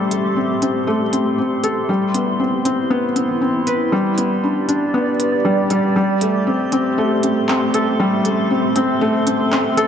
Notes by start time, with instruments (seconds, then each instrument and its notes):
Already playing: analog synth bass A1, felt piano G3 A3 C4 A4, ambient pad A3 G4 C6
0.11 felt piano A3, closed hi-hat
0.36 felt piano C4
0.62 felt piano C4, closed hi-hat
0.87 felt piano A3
1.13 analog synth bass A1, felt piano C4, closed hi-hat
1.38 felt piano C4
1.64 felt piano A4, closed hi-hat
1.89 analog synth bass C2, felt piano G3, ambient pad E4
2.14 felt piano B3, closed hi-hat
2.40 felt piano C4
2.65 felt piano C4, closed hi-hat
2.90 felt piano B3
3.16 analog synth bass C2, felt piano C4, closed hi-hat
3.28 analog synth bass C2
3.42 felt piano C4
3.67 felt piano B4, closed hi-hat
3.92 analog synth bass G1, felt piano G3, ambient pad G4 D5
4.18 felt piano B3, closed hi-hat
4.43 felt piano D4
4.68 felt piano D4, closed hi-hat
4.94 felt piano B3
5.19 analog synth bass G1, felt piano B4, closed hi-hat
5.45 felt piano G3
5.70 felt piano G3, closed hi-hat
5.96 analog synth bass A1, felt piano G3, ambient pad A3 C6
6.21 felt piano A3, closed hi-hat
6.47 felt piano C4
6.72 felt piano C4, closed hi-hat
6.98 felt piano A3
7.23 analog synth bass A1, felt piano C4, closed hi-hat
7.36 analog synth bass A1
7.49 felt piano C4, clap
7.74 felt piano A4, closed hi-hat
7.99 felt piano G3, ambient pad A4
8.25 felt piano A3, closed hi-hat
8.50 felt piano C4
8.76 felt piano C4, closed hi-hat
9.01 felt piano A3
9.27 analog synth bass A1, felt piano C4, closed hi-hat
9.52 felt piano C4, clap
9.77 felt piano A4, closed hi-hat